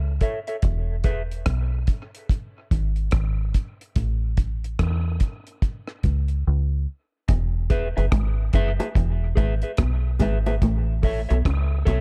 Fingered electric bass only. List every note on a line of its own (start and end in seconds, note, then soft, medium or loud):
0.00 0.18 C#2 medium
0.63 1.42 E1 loud
1.47 1.85 B1 medium
2.72 3.10 G#1 medium
3.13 3.52 G#1 medium
3.97 4.76 A1 loud
4.80 5.18 E2 medium
6.05 6.43 C#2 loud
6.47 6.85 C#2 loud
7.29 7.93 E1 loud
7.98 8.12 F#1 medium
8.13 8.51 G#1 medium
8.54 8.78 F#1 medium
8.96 9.35 E1 loud
9.38 9.62 G#1 medium
9.79 10.18 B1 medium
10.21 10.59 G#1 medium
10.63 11.26 A1 loud
11.31 11.45 B1 medium
11.46 11.84 C#2 medium
11.88 12.01 B1 medium